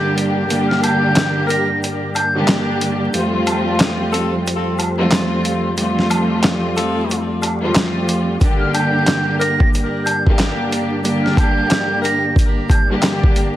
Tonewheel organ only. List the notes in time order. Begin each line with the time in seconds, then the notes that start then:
Already playing: G2 D3 A#3 G4 D5
3.14 F2 F3 A3 C5
5.78 D5
8.41 G2 D3 A#3 G4 D5